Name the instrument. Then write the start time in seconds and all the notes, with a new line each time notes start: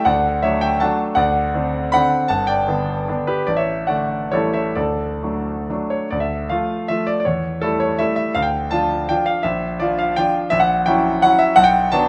grand piano
0.05 D2 D5 F#5
0.42 F#3 A3 D4 C#5 E5
0.61 E5 G5
0.80 F#3 A3 D4 F#5 A5
1.15 D2 D5 F#5
1.54 D3 C4 D4
1.92 D3 C4 D4 F#5 B5
2.28 G1 F#5 A5
2.47 D5 G5
2.68 D3 B3 D4
3.08 D3 B3 D4
3.27 G4 B4
3.47 A1 D5
3.56 C#5 E5
3.87 D3 A3 D4 D5 F#5
4.32 A1 G3 A3 E4 A4 C#5
4.53 C#5 E5
4.75 D2 A4 D5
5.23 F#3 A3 D4
5.70 F#3 A3 D4
5.90 C#5
6.11 D2 D5
6.20 E5
6.50 F3 A3 F4 F5
6.88 F3 A3 F4 E5
7.07 D5
7.20 D5
7.25 E2 C#5
7.62 G3 A3 E4 A4
7.80 C#5
7.99 G3 A3 E4 E5
8.16 E5
8.35 D2 F5
8.42 G5
8.71 F3 D4 F4 A5
9.09 F3 D4 F4 G5
9.26 F5
9.43 A#1 E5
9.80 F3 D4 F4 D5
9.99 F5
10.16 F3 D4 F4 G5
10.50 A#1 E5
10.60 F#5
10.86 F#3 C#4 E4 G5
11.22 F#3 C#4 E4 F#5
11.39 E5
11.56 B1 F#5
11.64 G5
11.92 F#3 B3 D4 A5